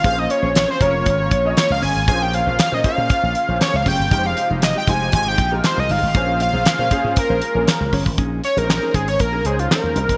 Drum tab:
HH |x-x-x-x-x-x-x-o-|x-x-x-x-x-x-x-o-|x-x-x-x-x-x-x-o-|x-x-x-x-x-x-x-o-|
CP |----x-------x---|----x-------x---|----x-------x---|----x-------x---|
SD |----o-------o---|----o-------o---|----o-------o---|----o-------o---|
BD |o-----o-o-o-----|o-----o-o-----o-|o-----o-o-o-----|o-----o-o-----oo|

HH |x-xx--xxx-xx--xx|
CP |----x-------x---|
SD |----o-------o---|
BD |o-----o-o------o|